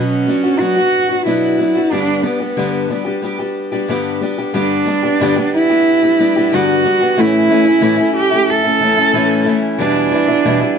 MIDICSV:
0, 0, Header, 1, 3, 480
1, 0, Start_track
1, 0, Tempo, 655738
1, 1412, Time_signature, 4, 2, 24, 8
1, 7895, End_track
2, 0, Start_track
2, 0, Title_t, "Cello"
2, 0, Program_c, 0, 42
2, 0, Note_on_c, 0, 61, 80
2, 436, Note_on_c, 0, 66, 102
2, 447, Note_off_c, 0, 61, 0
2, 917, Note_off_c, 0, 66, 0
2, 921, Note_on_c, 0, 64, 83
2, 1400, Note_on_c, 0, 62, 88
2, 1411, Note_off_c, 0, 64, 0
2, 1632, Note_on_c, 0, 59, 68
2, 1643, Note_off_c, 0, 62, 0
2, 2124, Note_off_c, 0, 59, 0
2, 3337, Note_on_c, 0, 62, 86
2, 4027, Note_off_c, 0, 62, 0
2, 4059, Note_on_c, 0, 64, 102
2, 4788, Note_on_c, 0, 66, 93
2, 4799, Note_off_c, 0, 64, 0
2, 5272, Note_on_c, 0, 64, 101
2, 5283, Note_off_c, 0, 66, 0
2, 5967, Note_off_c, 0, 64, 0
2, 5971, Note_on_c, 0, 67, 103
2, 6223, Note_on_c, 0, 69, 101
2, 6234, Note_off_c, 0, 67, 0
2, 6937, Note_off_c, 0, 69, 0
2, 7174, Note_on_c, 0, 62, 93
2, 7895, Note_off_c, 0, 62, 0
2, 7895, End_track
3, 0, Start_track
3, 0, Title_t, "Steel-string acoustic guitar"
3, 0, Program_c, 1, 25
3, 0, Note_on_c, 1, 47, 68
3, 0, Note_on_c, 1, 54, 71
3, 0, Note_on_c, 1, 59, 75
3, 0, Note_on_c, 1, 66, 64
3, 186, Note_off_c, 1, 54, 0
3, 195, Note_off_c, 1, 59, 0
3, 195, Note_on_c, 1, 54, 51
3, 204, Note_on_c, 1, 59, 51
3, 206, Note_off_c, 1, 47, 0
3, 209, Note_off_c, 1, 66, 0
3, 212, Note_on_c, 1, 62, 53
3, 218, Note_on_c, 1, 66, 66
3, 309, Note_off_c, 1, 66, 0
3, 318, Note_on_c, 1, 66, 52
3, 322, Note_off_c, 1, 54, 0
3, 322, Note_off_c, 1, 62, 0
3, 326, Note_off_c, 1, 59, 0
3, 331, Note_on_c, 1, 62, 45
3, 345, Note_on_c, 1, 59, 38
3, 439, Note_off_c, 1, 59, 0
3, 442, Note_on_c, 1, 54, 59
3, 444, Note_off_c, 1, 66, 0
3, 446, Note_off_c, 1, 62, 0
3, 448, Note_on_c, 1, 59, 60
3, 455, Note_on_c, 1, 62, 61
3, 465, Note_on_c, 1, 66, 66
3, 547, Note_off_c, 1, 66, 0
3, 556, Note_on_c, 1, 66, 47
3, 562, Note_off_c, 1, 62, 0
3, 566, Note_off_c, 1, 54, 0
3, 569, Note_off_c, 1, 59, 0
3, 570, Note_on_c, 1, 62, 40
3, 578, Note_on_c, 1, 59, 35
3, 789, Note_off_c, 1, 66, 0
3, 798, Note_on_c, 1, 66, 51
3, 802, Note_off_c, 1, 62, 0
3, 811, Note_on_c, 1, 62, 45
3, 813, Note_off_c, 1, 59, 0
3, 822, Note_on_c, 1, 59, 41
3, 918, Note_off_c, 1, 59, 0
3, 920, Note_on_c, 1, 47, 65
3, 921, Note_on_c, 1, 54, 62
3, 922, Note_off_c, 1, 62, 0
3, 925, Note_off_c, 1, 66, 0
3, 927, Note_on_c, 1, 59, 66
3, 931, Note_on_c, 1, 62, 71
3, 936, Note_on_c, 1, 66, 67
3, 1149, Note_off_c, 1, 54, 0
3, 1158, Note_on_c, 1, 54, 48
3, 1163, Note_off_c, 1, 59, 0
3, 1166, Note_off_c, 1, 47, 0
3, 1171, Note_off_c, 1, 62, 0
3, 1172, Note_on_c, 1, 59, 44
3, 1174, Note_off_c, 1, 66, 0
3, 1179, Note_on_c, 1, 62, 54
3, 1184, Note_on_c, 1, 66, 47
3, 1272, Note_off_c, 1, 66, 0
3, 1281, Note_on_c, 1, 66, 43
3, 1285, Note_off_c, 1, 54, 0
3, 1286, Note_off_c, 1, 62, 0
3, 1292, Note_off_c, 1, 59, 0
3, 1295, Note_on_c, 1, 62, 38
3, 1301, Note_on_c, 1, 59, 36
3, 1398, Note_off_c, 1, 59, 0
3, 1400, Note_on_c, 1, 43, 59
3, 1403, Note_on_c, 1, 50, 63
3, 1404, Note_off_c, 1, 62, 0
3, 1406, Note_on_c, 1, 55, 69
3, 1406, Note_on_c, 1, 59, 61
3, 1407, Note_off_c, 1, 66, 0
3, 1413, Note_on_c, 1, 62, 63
3, 1417, Note_on_c, 1, 67, 68
3, 1619, Note_off_c, 1, 55, 0
3, 1626, Note_off_c, 1, 59, 0
3, 1628, Note_on_c, 1, 55, 53
3, 1635, Note_on_c, 1, 59, 49
3, 1637, Note_off_c, 1, 62, 0
3, 1644, Note_off_c, 1, 67, 0
3, 1645, Note_on_c, 1, 62, 57
3, 1647, Note_off_c, 1, 43, 0
3, 1648, Note_off_c, 1, 50, 0
3, 1652, Note_on_c, 1, 67, 56
3, 1747, Note_off_c, 1, 67, 0
3, 1756, Note_on_c, 1, 67, 39
3, 1759, Note_off_c, 1, 62, 0
3, 1761, Note_off_c, 1, 55, 0
3, 1764, Note_off_c, 1, 59, 0
3, 1768, Note_on_c, 1, 62, 37
3, 1777, Note_on_c, 1, 59, 35
3, 1779, Note_on_c, 1, 55, 34
3, 1877, Note_off_c, 1, 55, 0
3, 1881, Note_off_c, 1, 59, 0
3, 1881, Note_on_c, 1, 43, 69
3, 1881, Note_on_c, 1, 50, 72
3, 1883, Note_off_c, 1, 62, 0
3, 1885, Note_off_c, 1, 67, 0
3, 1886, Note_on_c, 1, 55, 70
3, 1890, Note_on_c, 1, 59, 73
3, 1891, Note_on_c, 1, 62, 70
3, 1895, Note_on_c, 1, 67, 66
3, 2101, Note_off_c, 1, 55, 0
3, 2110, Note_on_c, 1, 55, 49
3, 2114, Note_off_c, 1, 59, 0
3, 2120, Note_off_c, 1, 62, 0
3, 2122, Note_on_c, 1, 59, 54
3, 2126, Note_off_c, 1, 67, 0
3, 2128, Note_off_c, 1, 43, 0
3, 2128, Note_off_c, 1, 50, 0
3, 2128, Note_on_c, 1, 62, 56
3, 2135, Note_on_c, 1, 67, 55
3, 2221, Note_off_c, 1, 67, 0
3, 2229, Note_off_c, 1, 62, 0
3, 2230, Note_on_c, 1, 67, 50
3, 2238, Note_on_c, 1, 62, 52
3, 2239, Note_off_c, 1, 59, 0
3, 2242, Note_off_c, 1, 55, 0
3, 2247, Note_on_c, 1, 59, 42
3, 2254, Note_on_c, 1, 55, 47
3, 2347, Note_off_c, 1, 55, 0
3, 2354, Note_off_c, 1, 59, 0
3, 2356, Note_on_c, 1, 55, 61
3, 2362, Note_off_c, 1, 62, 0
3, 2363, Note_off_c, 1, 67, 0
3, 2363, Note_on_c, 1, 59, 65
3, 2371, Note_on_c, 1, 62, 61
3, 2377, Note_on_c, 1, 67, 74
3, 2473, Note_off_c, 1, 67, 0
3, 2480, Note_off_c, 1, 62, 0
3, 2482, Note_on_c, 1, 67, 48
3, 2485, Note_off_c, 1, 55, 0
3, 2489, Note_off_c, 1, 59, 0
3, 2489, Note_on_c, 1, 62, 44
3, 2497, Note_on_c, 1, 59, 42
3, 2503, Note_on_c, 1, 55, 38
3, 2713, Note_off_c, 1, 67, 0
3, 2719, Note_off_c, 1, 62, 0
3, 2721, Note_on_c, 1, 67, 55
3, 2726, Note_off_c, 1, 59, 0
3, 2727, Note_on_c, 1, 62, 51
3, 2731, Note_off_c, 1, 55, 0
3, 2735, Note_on_c, 1, 59, 46
3, 2740, Note_on_c, 1, 55, 42
3, 2843, Note_off_c, 1, 55, 0
3, 2843, Note_on_c, 1, 43, 70
3, 2844, Note_off_c, 1, 59, 0
3, 2846, Note_on_c, 1, 50, 66
3, 2848, Note_off_c, 1, 62, 0
3, 2848, Note_off_c, 1, 67, 0
3, 2852, Note_on_c, 1, 55, 72
3, 2853, Note_on_c, 1, 59, 69
3, 2856, Note_on_c, 1, 62, 74
3, 2861, Note_on_c, 1, 67, 71
3, 3076, Note_off_c, 1, 55, 0
3, 3080, Note_off_c, 1, 59, 0
3, 3085, Note_on_c, 1, 55, 56
3, 3089, Note_off_c, 1, 43, 0
3, 3089, Note_off_c, 1, 62, 0
3, 3089, Note_on_c, 1, 59, 52
3, 3091, Note_off_c, 1, 50, 0
3, 3096, Note_off_c, 1, 67, 0
3, 3098, Note_on_c, 1, 62, 58
3, 3105, Note_on_c, 1, 67, 56
3, 3198, Note_off_c, 1, 67, 0
3, 3204, Note_off_c, 1, 62, 0
3, 3207, Note_on_c, 1, 67, 47
3, 3209, Note_off_c, 1, 59, 0
3, 3210, Note_off_c, 1, 55, 0
3, 3213, Note_on_c, 1, 62, 47
3, 3217, Note_on_c, 1, 59, 43
3, 3230, Note_on_c, 1, 55, 44
3, 3315, Note_off_c, 1, 55, 0
3, 3319, Note_off_c, 1, 59, 0
3, 3320, Note_on_c, 1, 43, 67
3, 3321, Note_off_c, 1, 62, 0
3, 3321, Note_off_c, 1, 67, 0
3, 3323, Note_on_c, 1, 50, 71
3, 3324, Note_on_c, 1, 55, 76
3, 3327, Note_on_c, 1, 59, 72
3, 3330, Note_on_c, 1, 62, 77
3, 3330, Note_on_c, 1, 67, 85
3, 3546, Note_off_c, 1, 55, 0
3, 3551, Note_off_c, 1, 59, 0
3, 3555, Note_on_c, 1, 55, 65
3, 3560, Note_on_c, 1, 59, 61
3, 3561, Note_off_c, 1, 62, 0
3, 3564, Note_off_c, 1, 67, 0
3, 3568, Note_off_c, 1, 43, 0
3, 3569, Note_off_c, 1, 50, 0
3, 3570, Note_on_c, 1, 62, 63
3, 3573, Note_on_c, 1, 67, 62
3, 3671, Note_off_c, 1, 67, 0
3, 3680, Note_on_c, 1, 67, 45
3, 3681, Note_off_c, 1, 62, 0
3, 3686, Note_off_c, 1, 55, 0
3, 3688, Note_off_c, 1, 59, 0
3, 3690, Note_on_c, 1, 62, 45
3, 3696, Note_on_c, 1, 59, 49
3, 3702, Note_on_c, 1, 55, 41
3, 3806, Note_off_c, 1, 55, 0
3, 3806, Note_on_c, 1, 43, 75
3, 3807, Note_off_c, 1, 62, 0
3, 3808, Note_off_c, 1, 67, 0
3, 3809, Note_off_c, 1, 59, 0
3, 3811, Note_on_c, 1, 50, 77
3, 3815, Note_on_c, 1, 55, 75
3, 3816, Note_on_c, 1, 62, 89
3, 3818, Note_on_c, 1, 59, 75
3, 3824, Note_on_c, 1, 67, 88
3, 3918, Note_off_c, 1, 67, 0
3, 3926, Note_on_c, 1, 67, 51
3, 3927, Note_off_c, 1, 62, 0
3, 3931, Note_off_c, 1, 43, 0
3, 3933, Note_off_c, 1, 50, 0
3, 3933, Note_off_c, 1, 59, 0
3, 3935, Note_off_c, 1, 55, 0
3, 3936, Note_on_c, 1, 62, 48
3, 3942, Note_on_c, 1, 59, 54
3, 3948, Note_on_c, 1, 55, 39
3, 4161, Note_off_c, 1, 67, 0
3, 4165, Note_off_c, 1, 62, 0
3, 4170, Note_on_c, 1, 67, 49
3, 4174, Note_off_c, 1, 59, 0
3, 4174, Note_on_c, 1, 62, 54
3, 4182, Note_off_c, 1, 55, 0
3, 4183, Note_on_c, 1, 59, 44
3, 4191, Note_on_c, 1, 55, 42
3, 4397, Note_off_c, 1, 67, 0
3, 4404, Note_off_c, 1, 62, 0
3, 4406, Note_on_c, 1, 67, 47
3, 4411, Note_off_c, 1, 59, 0
3, 4413, Note_on_c, 1, 62, 43
3, 4418, Note_off_c, 1, 55, 0
3, 4420, Note_on_c, 1, 59, 39
3, 4427, Note_on_c, 1, 55, 39
3, 4523, Note_off_c, 1, 55, 0
3, 4531, Note_off_c, 1, 59, 0
3, 4531, Note_off_c, 1, 67, 0
3, 4532, Note_on_c, 1, 55, 57
3, 4534, Note_off_c, 1, 62, 0
3, 4540, Note_on_c, 1, 59, 58
3, 4543, Note_on_c, 1, 62, 56
3, 4549, Note_on_c, 1, 67, 61
3, 4649, Note_off_c, 1, 67, 0
3, 4654, Note_off_c, 1, 55, 0
3, 4657, Note_off_c, 1, 62, 0
3, 4657, Note_on_c, 1, 67, 56
3, 4658, Note_off_c, 1, 59, 0
3, 4666, Note_on_c, 1, 62, 53
3, 4673, Note_on_c, 1, 59, 52
3, 4677, Note_on_c, 1, 55, 43
3, 4772, Note_off_c, 1, 55, 0
3, 4772, Note_off_c, 1, 62, 0
3, 4774, Note_off_c, 1, 59, 0
3, 4776, Note_off_c, 1, 67, 0
3, 4776, Note_on_c, 1, 43, 83
3, 4777, Note_on_c, 1, 50, 74
3, 4780, Note_on_c, 1, 55, 76
3, 4781, Note_on_c, 1, 62, 76
3, 4783, Note_on_c, 1, 59, 81
3, 5001, Note_off_c, 1, 55, 0
3, 5005, Note_off_c, 1, 59, 0
3, 5009, Note_on_c, 1, 55, 55
3, 5014, Note_off_c, 1, 62, 0
3, 5014, Note_on_c, 1, 59, 59
3, 5016, Note_off_c, 1, 43, 0
3, 5016, Note_off_c, 1, 50, 0
3, 5023, Note_on_c, 1, 62, 57
3, 5028, Note_on_c, 1, 67, 60
3, 5121, Note_off_c, 1, 67, 0
3, 5129, Note_on_c, 1, 67, 45
3, 5130, Note_off_c, 1, 62, 0
3, 5132, Note_off_c, 1, 55, 0
3, 5134, Note_off_c, 1, 59, 0
3, 5139, Note_on_c, 1, 62, 45
3, 5144, Note_on_c, 1, 59, 44
3, 5151, Note_on_c, 1, 55, 44
3, 5246, Note_on_c, 1, 45, 65
3, 5249, Note_off_c, 1, 59, 0
3, 5250, Note_off_c, 1, 55, 0
3, 5252, Note_off_c, 1, 67, 0
3, 5252, Note_on_c, 1, 57, 75
3, 5253, Note_on_c, 1, 52, 76
3, 5255, Note_off_c, 1, 62, 0
3, 5258, Note_on_c, 1, 61, 71
3, 5263, Note_on_c, 1, 64, 85
3, 5474, Note_off_c, 1, 52, 0
3, 5483, Note_off_c, 1, 57, 0
3, 5483, Note_on_c, 1, 52, 66
3, 5490, Note_off_c, 1, 45, 0
3, 5490, Note_off_c, 1, 61, 0
3, 5492, Note_on_c, 1, 57, 67
3, 5493, Note_off_c, 1, 64, 0
3, 5498, Note_on_c, 1, 61, 69
3, 5501, Note_on_c, 1, 64, 65
3, 5590, Note_off_c, 1, 64, 0
3, 5599, Note_on_c, 1, 64, 54
3, 5607, Note_off_c, 1, 61, 0
3, 5609, Note_off_c, 1, 52, 0
3, 5613, Note_off_c, 1, 57, 0
3, 5616, Note_on_c, 1, 61, 49
3, 5621, Note_on_c, 1, 57, 41
3, 5716, Note_off_c, 1, 57, 0
3, 5716, Note_on_c, 1, 45, 84
3, 5717, Note_off_c, 1, 61, 0
3, 5720, Note_off_c, 1, 64, 0
3, 5720, Note_on_c, 1, 52, 74
3, 5725, Note_on_c, 1, 57, 80
3, 5726, Note_on_c, 1, 61, 84
3, 5729, Note_on_c, 1, 64, 85
3, 5829, Note_off_c, 1, 64, 0
3, 5838, Note_on_c, 1, 64, 53
3, 5839, Note_off_c, 1, 61, 0
3, 5845, Note_off_c, 1, 45, 0
3, 5847, Note_off_c, 1, 52, 0
3, 5848, Note_on_c, 1, 61, 55
3, 5850, Note_off_c, 1, 57, 0
3, 5863, Note_on_c, 1, 57, 44
3, 6073, Note_off_c, 1, 64, 0
3, 6082, Note_on_c, 1, 64, 60
3, 6086, Note_off_c, 1, 61, 0
3, 6095, Note_on_c, 1, 61, 43
3, 6097, Note_off_c, 1, 57, 0
3, 6105, Note_on_c, 1, 57, 43
3, 6313, Note_off_c, 1, 64, 0
3, 6322, Note_on_c, 1, 64, 49
3, 6325, Note_off_c, 1, 61, 0
3, 6334, Note_on_c, 1, 61, 44
3, 6337, Note_off_c, 1, 57, 0
3, 6346, Note_on_c, 1, 57, 44
3, 6446, Note_off_c, 1, 57, 0
3, 6447, Note_off_c, 1, 64, 0
3, 6447, Note_on_c, 1, 52, 59
3, 6451, Note_off_c, 1, 61, 0
3, 6455, Note_on_c, 1, 57, 59
3, 6460, Note_on_c, 1, 61, 62
3, 6471, Note_on_c, 1, 64, 64
3, 6555, Note_off_c, 1, 64, 0
3, 6564, Note_on_c, 1, 64, 59
3, 6567, Note_off_c, 1, 61, 0
3, 6570, Note_off_c, 1, 52, 0
3, 6574, Note_off_c, 1, 57, 0
3, 6576, Note_on_c, 1, 61, 50
3, 6588, Note_on_c, 1, 57, 46
3, 6685, Note_on_c, 1, 45, 74
3, 6687, Note_off_c, 1, 57, 0
3, 6688, Note_off_c, 1, 64, 0
3, 6688, Note_on_c, 1, 52, 78
3, 6690, Note_off_c, 1, 61, 0
3, 6696, Note_on_c, 1, 57, 81
3, 6699, Note_on_c, 1, 61, 87
3, 6700, Note_on_c, 1, 64, 79
3, 6909, Note_off_c, 1, 52, 0
3, 6918, Note_off_c, 1, 57, 0
3, 6918, Note_on_c, 1, 52, 57
3, 6922, Note_off_c, 1, 61, 0
3, 6926, Note_on_c, 1, 57, 61
3, 6928, Note_off_c, 1, 45, 0
3, 6931, Note_on_c, 1, 61, 63
3, 6933, Note_off_c, 1, 64, 0
3, 6942, Note_on_c, 1, 64, 73
3, 7158, Note_off_c, 1, 52, 0
3, 7162, Note_on_c, 1, 40, 67
3, 7167, Note_on_c, 1, 52, 81
3, 7168, Note_off_c, 1, 64, 0
3, 7169, Note_off_c, 1, 57, 0
3, 7169, Note_on_c, 1, 47, 78
3, 7171, Note_off_c, 1, 61, 0
3, 7173, Note_on_c, 1, 55, 83
3, 7177, Note_on_c, 1, 64, 76
3, 7178, Note_on_c, 1, 59, 80
3, 7395, Note_off_c, 1, 52, 0
3, 7404, Note_on_c, 1, 52, 75
3, 7407, Note_off_c, 1, 40, 0
3, 7408, Note_off_c, 1, 55, 0
3, 7410, Note_off_c, 1, 47, 0
3, 7414, Note_off_c, 1, 64, 0
3, 7415, Note_off_c, 1, 59, 0
3, 7417, Note_on_c, 1, 55, 68
3, 7423, Note_on_c, 1, 59, 70
3, 7431, Note_on_c, 1, 64, 79
3, 7511, Note_off_c, 1, 64, 0
3, 7520, Note_on_c, 1, 64, 49
3, 7524, Note_off_c, 1, 59, 0
3, 7528, Note_off_c, 1, 52, 0
3, 7530, Note_off_c, 1, 55, 0
3, 7533, Note_on_c, 1, 59, 48
3, 7539, Note_on_c, 1, 55, 44
3, 7544, Note_on_c, 1, 52, 40
3, 7642, Note_off_c, 1, 52, 0
3, 7646, Note_off_c, 1, 64, 0
3, 7646, Note_on_c, 1, 40, 81
3, 7649, Note_off_c, 1, 55, 0
3, 7650, Note_on_c, 1, 47, 78
3, 7651, Note_on_c, 1, 52, 78
3, 7652, Note_off_c, 1, 59, 0
3, 7658, Note_on_c, 1, 55, 74
3, 7660, Note_on_c, 1, 59, 81
3, 7663, Note_on_c, 1, 64, 84
3, 7757, Note_off_c, 1, 64, 0
3, 7766, Note_on_c, 1, 64, 50
3, 7767, Note_off_c, 1, 59, 0
3, 7768, Note_off_c, 1, 40, 0
3, 7770, Note_off_c, 1, 47, 0
3, 7771, Note_off_c, 1, 52, 0
3, 7774, Note_off_c, 1, 55, 0
3, 7776, Note_on_c, 1, 59, 52
3, 7784, Note_on_c, 1, 55, 54
3, 7792, Note_on_c, 1, 52, 48
3, 7895, Note_off_c, 1, 52, 0
3, 7895, Note_off_c, 1, 55, 0
3, 7895, Note_off_c, 1, 59, 0
3, 7895, Note_off_c, 1, 64, 0
3, 7895, End_track
0, 0, End_of_file